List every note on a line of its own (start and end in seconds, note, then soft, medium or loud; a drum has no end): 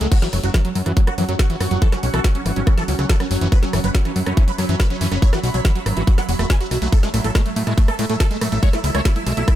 0.00 0.08 C#2 medium
0.00 0.10 F#3 medium
0.00 0.07 G#3 medium
0.00 0.12 A3 medium
0.00 0.07 A3 medium
0.00 0.87 A4 medium
0.00 0.12 E5 medium
0.00 0.63 E6 medium
0.00 closed hi-hat medium
0.00 swell medium
0.12 9.55 F#3 medium
0.12 0.14 F#3 medium
0.12 8.22 C#4 medium
0.12 0.18 F#4 loud
0.12 kick loud
0.12 closed hi-hat medium
0.12 crash medium
0.22 0.28 E3 loud
0.22 0.28 F#3 medium
0.22 snare soft
0.22 closed hi-hat medium
0.33 0.40 F#1 medium
0.33 0.37 F#3 medium
0.33 0.39 F#3 medium
0.33 7.62 F#4 loud
0.33 cross-stick soft
0.33 open hi-hat loud
0.44 0.50 F#1 medium
0.44 0.46 F#3 medium
0.44 0.50 F#4 medium
0.44 closed hi-hat medium
0.52 0.60 E3 loud
0.52 0.60 F#3 medium
0.52 3.76 F#5 medium
0.52 kick loud
0.52 cross-stick medium
0.52 snare loud
0.52 closed hi-hat loud
0.65 0.71 F#3 medium
0.65 0.69 F#3 medium
0.65 closed hi-hat medium
0.75 0.82 F#2 medium
0.75 0.78 F#3 medium
0.75 open hi-hat loud
0.86 0.93 F#2 medium
0.86 0.92 E3 loud
0.86 0.92 F#3 medium
0.86 cross-stick soft
0.86 closed hi-hat medium
0.97 1.03 F#3 medium
0.97 1.01 F#3 medium
0.97 3.72 C#6 medium
0.97 kick loud
0.97 closed hi-hat loud
1.07 1.10 F#3 medium
1.07 1.14 F#4 medium
1.07 cross-stick medium
1.07 closed hi-hat medium
1.18 1.25 F#2 medium
1.18 1.24 E3 loud
1.18 1.24 F#3 medium
1.18 open hi-hat loud
1.29 1.35 F#2 medium
1.29 1.33 F#3 medium
1.29 1.35 F#3 medium
1.29 closed hi-hat medium
1.39 1.42 F#3 medium
1.39 1.46 F#4 loud
1.39 kick loud
1.39 cross-stick soft
1.39 snare loud
1.39 closed hi-hat loud
1.50 1.56 E3 loud
1.50 1.56 F#3 medium
1.50 closed hi-hat medium
1.61 1.67 F#2 loud
1.61 1.65 F#3 medium
1.61 1.67 F#3 medium
1.61 cross-stick medium
1.61 open hi-hat loud
1.71 1.78 F#1 medium
1.71 1.77 F#3 medium
1.71 1.74 F#3 medium
1.71 closed hi-hat medium
1.82 1.88 E3 loud
1.82 1.88 A4 loud
1.82 kick loud
1.82 closed hi-hat loud
1.92 1.97 F#3 medium
1.92 1.99 C#4 medium
1.92 cross-stick soft
1.92 snare soft
1.92 closed hi-hat medium
2.03 2.10 B1 medium
2.03 2.06 F#3 medium
2.03 2.09 C#4 medium
2.03 open hi-hat loud
2.14 2.20 B1 medium
2.14 2.20 E3 loud
2.14 2.20 A4 medium
2.14 cross-stick medium
2.14 closed hi-hat medium
2.24 2.28 F#3 medium
2.24 2.31 C#4 medium
2.24 kick loud
2.24 snare loud
2.24 closed hi-hat loud
2.35 2.37 F#3 medium
2.35 2.41 C#4 medium
2.35 closed hi-hat medium
2.46 2.52 G#1 medium
2.46 2.52 E3 loud
2.46 cross-stick soft
2.46 open hi-hat loud
2.56 2.63 G#1 medium
2.56 2.60 F#3 medium
2.56 2.63 C#4 medium
2.56 closed hi-hat medium
2.67 2.69 F#3 medium
2.67 2.73 C#4 medium
2.67 kick loud
2.67 cross-stick medium
2.67 closed hi-hat loud
2.78 2.84 E3 loud
2.78 2.84 A4 loud
2.78 snare soft
2.78 closed hi-hat medium
2.88 2.95 C#2 loud
2.88 2.92 F#3 medium
2.88 2.94 C#4 medium
2.88 open hi-hat loud
2.99 3.06 C#2 medium
2.99 3.01 F#3 medium
2.99 3.05 C#4 medium
2.99 cross-stick soft
2.99 closed hi-hat medium
3.09 3.16 E3 medium
3.09 3.16 A4 loud
3.09 kick loud
3.09 snare loud
3.09 closed hi-hat loud
3.20 3.24 F#3 medium
3.20 3.26 C#4 medium
3.20 cross-stick medium
3.20 closed hi-hat medium
3.31 3.37 F#1 loud
3.31 3.33 F#3 medium
3.31 3.37 C#4 medium
3.31 open hi-hat loud
3.41 3.48 F#1 medium
3.41 3.47 E3 loud
3.41 3.48 C#4 medium
3.41 closed hi-hat medium
3.52 3.56 F#3 medium
3.52 3.58 B4 loud
3.52 kick loud
3.52 cross-stick soft
3.52 closed hi-hat medium
3.59 3.65 F#3 medium
3.59 3.69 C#4 medium
3.59 8.44 B5 medium
3.59 snare soft
3.59 closed hi-hat medium
3.63 9.55 E5 medium
3.73 3.80 F#1 medium
3.73 3.79 E3 loud
3.73 3.80 C#4 medium
3.73 cross-stick medium
3.73 open hi-hat loud
3.84 3.91 F#1 medium
3.84 3.88 F#3 medium
3.84 3.90 B4 loud
3.84 closed hi-hat medium
3.95 3.97 F#3 medium
3.95 4.01 C#4 medium
3.95 kick loud
3.95 snare loud
3.95 closed hi-hat medium
4.05 4.11 E3 loud
4.05 4.11 C#4 medium
4.05 cross-stick soft
4.05 closed hi-hat soft
4.16 4.23 F#2 loud
4.16 4.20 F#3 medium
4.16 open hi-hat loud
4.26 4.33 F#2 medium
4.26 4.29 F#3 medium
4.26 4.33 C#4 medium
4.26 cross-stick medium
4.26 closed hi-hat soft
4.37 4.43 E3 loud
4.37 4.43 C#4 medium
4.37 kick loud
4.37 closed hi-hat medium
4.48 4.52 F#3 medium
4.48 4.54 B4 medium
4.48 closed hi-hat medium
4.58 4.65 F#2 loud
4.58 4.61 F#3 medium
4.58 4.65 C#4 medium
4.58 cross-stick soft
4.58 open hi-hat loud
4.69 4.76 F#2 medium
4.69 4.75 E3 loud
4.69 4.75 C#4 medium
4.69 closed hi-hat soft
4.80 4.84 F#3 medium
4.80 4.86 B4 loud
4.80 kick loud
4.80 cross-stick medium
4.80 snare loud
4.80 closed hi-hat loud
4.90 4.93 F#3 medium
4.90 4.97 C#4 medium
4.90 closed hi-hat medium
5.01 5.08 F#2 loud
5.01 5.07 E3 loud
5.01 5.07 C#4 medium
5.01 open hi-hat loud
5.12 5.18 F#1 medium
5.12 5.16 F#3 medium
5.12 5.18 C#4 medium
5.12 cross-stick soft
5.12 closed hi-hat medium
5.22 5.25 F#3 medium
5.22 5.28 C#5 loud
5.22 kick loud
5.22 closed hi-hat medium
5.33 5.39 E3 loud
5.33 5.39 F#4 medium
5.33 cross-stick medium
5.33 snare soft
5.33 closed hi-hat medium
5.44 5.50 B1 medium
5.44 5.48 F#3 medium
5.44 5.50 F#4 medium
5.44 open hi-hat loud
5.54 5.61 B1 medium
5.54 5.57 F#3 medium
5.54 5.60 C#5 medium
5.54 closed hi-hat soft
5.65 5.71 E3 loud
5.65 5.71 F#4 medium
5.65 kick loud
5.65 cross-stick soft
5.65 snare loud
5.65 closed hi-hat medium
5.75 5.80 F#3 medium
5.75 5.82 F#4 medium
5.75 closed hi-hat soft
5.86 5.93 G#1 loud
5.86 5.89 F#3 medium
5.86 cross-stick medium
5.86 open hi-hat loud
5.97 6.03 G#1 medium
5.97 6.03 E3 loud
5.97 6.03 F#4 medium
5.97 closed hi-hat medium
6.07 6.11 F#3 medium
6.07 6.14 F#4 medium
6.07 kick loud
6.07 closed hi-hat medium
6.18 6.20 F#3 medium
6.18 6.24 F#5 loud
6.18 cross-stick soft
6.18 snare soft
6.18 closed hi-hat medium
6.29 6.35 E1 medium
6.29 6.31 F#3 medium
6.29 6.35 F#4 medium
6.29 open hi-hat loud
6.39 6.46 E1 medium
6.39 6.43 A3 medium
6.39 6.46 F#4 medium
6.39 cross-stick medium
6.39 closed hi-hat soft
6.50 6.52 F#3 medium
6.50 6.56 G#5 loud
6.50 kick loud
6.50 snare loud
6.50 closed hi-hat loud
6.61 6.67 F#4 medium
6.61 6.63 F#4 medium
6.61 closed hi-hat medium
6.71 6.78 B1 loud
6.71 6.75 F#3 medium
6.71 6.77 F#4 medium
6.71 cross-stick soft
6.71 open hi-hat loud
6.82 6.89 B1 medium
6.82 6.88 A3 medium
6.82 6.88 F#4 medium
6.82 closed hi-hat medium
6.92 9.55 A3 loud
6.92 6.95 A3 medium
6.92 6.99 A4 loud
6.92 kick loud
6.92 closed hi-hat loud
6.92 ride medium
7.03 7.09 G#3 loud
7.03 7.09 A3 medium
7.03 snare soft
7.03 closed hi-hat medium
7.14 7.20 A1 medium
7.14 7.20 A3 medium
7.14 7.18 A3 medium
7.14 cross-stick soft
7.14 open hi-hat loud
7.14 ride medium
7.24 7.31 A1 medium
7.24 7.27 A3 medium
7.24 7.31 A4 medium
7.24 9.55 A4 medium
7.24 closed hi-hat soft
7.35 7.41 G#3 loud
7.35 7.41 A3 medium
7.35 kick loud
7.35 cross-stick medium
7.35 snare loud
7.35 closed hi-hat medium
7.35 ride medium
7.46 7.52 A3 medium
7.46 7.50 A3 medium
7.46 closed hi-hat medium
7.56 7.63 A2 loud
7.56 7.59 A3 medium
7.56 open hi-hat loud
7.56 ride medium
7.67 7.74 A2 medium
7.67 7.73 G#3 loud
7.67 7.73 A3 medium
7.67 cross-stick soft
7.67 closed hi-hat medium
7.76 7.84 A3 medium
7.76 7.82 A3 medium
7.76 9.55 E6 medium
7.76 kick loud
7.76 closed hi-hat medium
7.76 ride medium
7.88 7.91 A3 medium
7.88 7.94 A4 medium
7.88 cross-stick medium
7.88 closed hi-hat soft
7.99 8.06 A2 loud
7.99 8.05 G#3 loud
7.99 8.05 A3 medium
7.99 open hi-hat loud
7.99 ride medium
8.10 8.16 A2 medium
8.10 8.16 A3 medium
8.10 8.14 A3 medium
8.10 closed hi-hat soft
8.20 8.23 A3 medium
8.20 8.26 A4 medium
8.20 kick loud
8.20 cross-stick soft
8.20 snare loud
8.20 closed hi-hat medium
8.20 ride medium
8.31 8.37 G#3 loud
8.31 8.37 A3 medium
8.31 closed hi-hat medium
8.41 8.48 A2 loud
8.41 8.48 A3 medium
8.41 8.45 A3 medium
8.41 cross-stick medium
8.41 open hi-hat loud
8.41 ride medium
8.52 8.59 A1 medium
8.52 8.58 A3 medium
8.52 8.54 A3 medium
8.52 closed hi-hat soft
8.63 8.69 G#3 loud
8.63 8.69 C#5 loud
8.63 kick loud
8.63 closed hi-hat medium
8.63 ride medium
8.73 8.77 A3 medium
8.73 8.80 E4 medium
8.73 cross-stick soft
8.73 snare soft
8.73 closed hi-hat medium
8.84 8.91 C#2 medium
8.84 8.86 A3 medium
8.84 8.90 E4 medium
8.84 open hi-hat loud
8.84 ride medium
8.95 9.01 C#2 medium
8.95 9.01 G#3 loud
8.95 9.01 C#5 loud
8.95 cross-stick medium
8.95 closed hi-hat soft
9.05 9.09 A3 medium
9.05 9.11 E4 medium
9.05 kick loud
9.05 snare loud
9.05 closed hi-hat medium
9.05 ride medium
9.16 9.18 A3 medium
9.16 9.22 E4 medium
9.16 closed hi-hat soft
9.27 9.33 B1 loud
9.27 9.33 G#3 loud
9.27 cross-stick soft
9.27 open hi-hat loud
9.27 ride medium
9.37 9.44 B1 medium
9.37 9.41 A3 medium
9.37 9.43 E4 medium
9.37 closed hi-hat medium
9.48 9.50 A3 medium
9.48 9.54 E4 medium
9.48 kick loud
9.48 cross-stick medium
9.48 closed hi-hat medium
9.48 ride medium